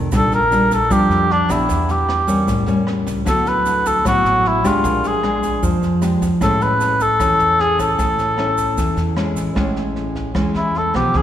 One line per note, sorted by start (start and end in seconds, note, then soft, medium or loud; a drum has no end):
0.00 0.11 F2 medium
0.00 0.10 C3 medium
0.12 0.87 A#1 medium
0.12 0.89 A#2 medium
0.12 0.38 G3 soft
0.12 0.38 D4 medium
0.12 0.38 F4 medium
0.12 kick medium
0.12 cross-stick medium
0.12 snare soft
0.12 shaker medium
0.16 0.32 A4 medium
0.32 0.70 A#4 loud
0.32 snare soft
0.32 shaker soft
0.51 0.77 G3 medium
0.51 0.77 D4 medium
0.51 0.77 F4 medium
0.51 snare soft
0.51 shaker medium
0.71 0.94 A4 medium
0.71 kick soft
0.71 snare soft
0.71 shaker medium
0.90 1.08 F2 medium
0.90 1.67 F3 medium
0.90 1.29 G3 medium
0.90 1.30 D4 medium
0.90 1.30 F4 medium
0.90 1.33 G4 loud
0.90 kick medium
0.90 cross-stick medium
0.90 snare soft
0.90 shaker medium
1.09 1.46 F2 medium
1.09 snare soft
1.09 shaker soft
1.30 1.53 D4 medium
1.30 snare soft
1.49 1.68 A#1 medium
1.49 2.25 B3 medium
1.49 2.25 D4 medium
1.49 1.93 E4 medium
1.49 2.25 G4 medium
1.49 kick soft
1.49 cross-stick medium
1.49 snare soft
1.49 shaker medium
1.68 2.44 E2 loud
1.68 2.27 E3 soft
1.68 kick medium
1.68 snare soft
1.68 shaker medium
1.89 2.49 G4 medium
1.89 snare soft
1.89 shaker soft
2.09 cross-stick medium
2.09 snare soft
2.27 2.64 G3 medium
2.27 2.64 A#3 medium
2.27 2.64 C#4 medium
2.27 kick soft
2.27 snare soft
2.27 shaker medium
2.47 2.66 A1 medium
2.47 3.24 A2 medium
2.47 kick medium
2.47 snare soft
2.47 shaker medium
2.66 3.03 E2 medium
2.66 3.24 G3 medium
2.66 3.25 A#3 medium
2.66 3.25 C#4 medium
2.66 snare soft
2.66 shaker soft
2.87 cross-stick medium
2.87 snare soft
3.07 3.25 C#2 medium
3.07 kick soft
3.07 snare soft
3.07 shaker medium
3.25 4.01 D2 medium
3.25 4.03 D3 soft
3.25 4.01 F#3 soft
3.25 4.02 B3 medium
3.25 4.02 E4 medium
3.25 3.50 A4 medium
3.25 kick medium
3.25 cross-stick medium
3.25 snare soft
3.25 shaker medium
3.46 3.89 B4 medium
3.46 snare soft
3.46 shaker soft
3.66 snare soft
3.66 shaker medium
3.85 4.06 A4 medium
3.85 kick soft
3.85 snare soft
3.85 shaker medium
4.04 4.23 A1 medium
4.04 4.82 A2 medium
4.04 4.61 F#3 medium
4.04 4.61 B3 soft
4.04 4.61 E4 medium
4.04 4.49 F#4 loud
4.04 kick medium
4.04 cross-stick medium
4.04 snare soft
4.04 shaker medium
4.24 4.61 A1 medium
4.24 snare soft
4.24 shaker soft
4.45 4.69 E4 medium
4.45 snare soft
4.64 4.83 D2 medium
4.64 5.20 G#3 medium
4.64 5.20 D4 medium
4.64 5.09 F4 medium
4.64 5.20 G4 medium
4.64 kick soft
4.64 cross-stick medium
4.64 snare soft
4.64 shaker medium
4.84 5.59 A#1 loud
4.84 5.61 A#2 soft
4.84 kick medium
4.84 snare soft
4.84 shaker medium
5.04 5.64 G#4 medium
5.04 snare soft
5.04 shaker soft
5.23 5.76 G#3 medium
5.23 5.76 D4 medium
5.23 cross-stick medium
5.23 snare soft
5.43 kick soft
5.43 snare soft
5.43 shaker medium
5.63 5.81 F2 medium
5.63 6.39 F3 medium
5.63 kick medium
5.63 snare soft
5.63 shaker medium
5.82 6.18 F2 medium
5.82 snare soft
5.82 shaker soft
6.02 6.27 G#3 soft
6.02 6.27 D4 medium
6.02 6.28 G4 medium
6.02 cross-stick medium
6.02 snare soft
6.02 shaker medium
6.22 6.40 E2 medium
6.22 kick soft
6.22 snare soft
6.22 shaker medium
6.41 7.16 A1 loud
6.41 7.18 A2 medium
6.41 6.94 G#3 medium
6.41 6.94 C#4 medium
6.41 6.94 E4 medium
6.41 6.64 A4 medium
6.41 kick medium
6.41 cross-stick medium
6.41 snare soft
6.41 shaker medium
6.61 7.04 B4 loud
6.61 snare soft
6.61 shaker soft
6.80 snare soft
6.80 shaker medium
7.00 7.62 A4 loud
7.00 kick soft
7.00 snare soft
7.00 shaker medium
7.20 7.38 E2 medium
7.20 7.97 E3 medium
7.20 7.76 C#4 medium
7.20 7.76 E4 medium
7.20 kick medium
7.20 cross-stick medium
7.20 snare soft
7.20 shaker medium
7.39 7.76 E2 medium
7.39 snare soft
7.39 shaker soft
7.59 7.80 G#4 loud
7.59 snare soft
7.79 7.97 A1 medium
7.79 8.35 C#4 medium
7.79 8.35 E4 medium
7.79 9.14 A4 medium
7.79 kick soft
7.79 cross-stick medium
7.79 snare soft
7.79 shaker medium
7.99 8.74 A1 loud
7.99 8.75 A2 medium
7.99 kick medium
7.99 snare soft
7.99 shaker medium
8.19 snare soft
8.19 shaker soft
8.38 8.91 C#4 medium
8.38 8.92 E4 medium
8.38 cross-stick medium
8.38 snare soft
8.58 kick soft
8.58 snare soft
8.58 shaker medium
8.77 8.96 E2 medium
8.77 9.54 E3 medium
8.77 kick medium
8.77 snare soft
8.77 shaker medium
8.96 9.33 E2 medium
8.96 snare soft
8.96 shaker soft
9.16 9.53 G#3 soft
9.16 9.53 C#4 medium
9.16 9.53 E4 medium
9.16 cross-stick medium
9.16 snare soft
9.36 9.55 A1 medium
9.36 kick soft
9.36 snare soft
9.36 shaker medium
9.55 10.31 A1 medium
9.55 10.33 A2 medium
9.55 10.31 G#3 soft
9.55 10.32 C#4 medium
9.55 10.32 E4 medium
9.55 kick medium
9.55 cross-stick medium
9.55 snare soft
9.76 snare soft
9.96 snare soft
10.15 kick soft
10.15 snare soft
10.34 10.53 E2 medium
10.34 11.12 E3 medium
10.34 10.74 G#3 medium
10.34 10.74 C#4 medium
10.34 10.74 E4 medium
10.34 kick medium
10.34 cross-stick medium
10.34 snare soft
10.54 10.91 E2 medium
10.54 10.79 E4 medium
10.54 snare soft
10.75 10.95 A4 medium
10.75 snare soft
10.94 11.12 B1 medium
10.94 11.22 F3 medium
10.94 11.22 B3 medium
10.94 11.19 G4 medium
10.94 kick soft
10.94 cross-stick medium
10.94 snare soft
11.14 11.22 C#2 loud
11.14 11.22 C#3 medium
11.14 11.22 G#4 medium
11.14 kick medium
11.14 snare soft